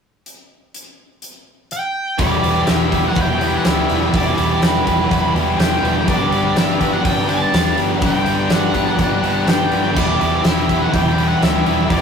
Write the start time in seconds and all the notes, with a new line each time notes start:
0.26 closed hi-hat
0.74 closed hi-hat
1.22 closed hi-hat
1.71 G5, closed hi-hat
2.18 E1 E2 B2 E3 G3 B3 E4 G4 B4 D5 E5 G5 D6, kick, open hi-hat
2.42 E1 E3 G3 B3 E4 G4, open hi-hat
2.66 E1 E3 G3 B3 E4 G4 E5, snare, open hi-hat
2.91 E3 G3 B3 D4 E4 G4, kick, open hi-hat
3.08 F#5
3.16 E1 E2 B2 E3 G3 B3 E4 G4, kick, open hi-hat
3.21 G5
3.41 E3 G3 B3 D4 E4 G4, open hi-hat
3.58 F#5
3.63 D2 E3 G3 B3 E4 G4 E5, snare, open hi-hat
3.89 E1 E3 G3 B3 E4 G4, open hi-hat
4.13 E1 E2 B2 E3 G3 B3 E4 G4 D5, kick, open hi-hat
4.38 E1 E3 G3 B3 E4 G4, open hi-hat
4.61 E1 E3 G3 B3 E4 G4, snare, open hi-hat
4.66 B4
4.85 E1 E3 G3 B3 D4 E4 G4, kick, open hi-hat
4.89 E3
5.09 E1 E2 B2 E3 G3 B3 E4 G4, kick, open hi-hat
5.34 E1 E3 B3 D4 E4 G4, open hi-hat
5.38 E3 G3
5.58 E1 E3 G3 B3 E4 G4 G5, snare, open hi-hat
5.82 E1 E3 G3 B3 E4 G4, open hi-hat
6.06 G2 D3 G3 B3 D4 G4 D5, kick, open hi-hat
6.31 G1 G3 B3 D4 G4, open hi-hat
6.55 G1 G3 B3 D4 G4 E5, snare, open hi-hat
6.81 G3 B3 D4 G4, kick, open hi-hat
6.93 F#5
7.04 G1 G2 D3 G3 B3 D4 G4 G5, kick, open hi-hat
7.29 G3 B3 D4 G4 A5, open hi-hat
7.52 E2 G3 B3 D4 G4, snare, open hi-hat
7.76 G1 G3 B3 D4 G4, open hi-hat
8.01 G1 G2 D3 G3 B3 D4 G4 A5, kick, open hi-hat
8.06 G5
8.24 G1 G3 B3 D4 G4, open hi-hat
8.48 G1 G3 B3 D4 G4, snare, open hi-hat
8.53 F#5
8.72 G1 G3 B3 D4 G4, kick, open hi-hat
8.97 G1 G2 D3 G3 B3 D4 G4, kick, open hi-hat
9.22 G1 G3 B3 D4 G4, open hi-hat
9.47 G1 G3 B3 D4 G4 G5, snare, open hi-hat
9.70 G1 G3 B3 D4 G4, open hi-hat
9.75 G3
9.95 E1 E2 B2 E3 G3 B3 E4 G4 D5 E5 G5, kick, crash
10.20 E1 E3 G3 B3 E4 G4, open hi-hat
10.44 E1 E3 G3 B3 E4 G4 E5, snare, open hi-hat
10.69 E3 G3 B3 D4 E4 G4, kick, open hi-hat
10.82 F#5
10.93 E1 E2 B2 E3 G3 B3 E4 G4 G5, kick, open hi-hat
11.17 E3 G3 B3 D4 E4 G4, open hi-hat
11.28 F#5
11.40 D2 E3 G3 B3 E4 G4 E5, snare, open hi-hat
11.65 E1 E3 G3 B3 E4 G4, open hi-hat
11.69 E3
11.89 E1 E2 B2 E3 G3 B3 E4 G4 D5, kick, open hi-hat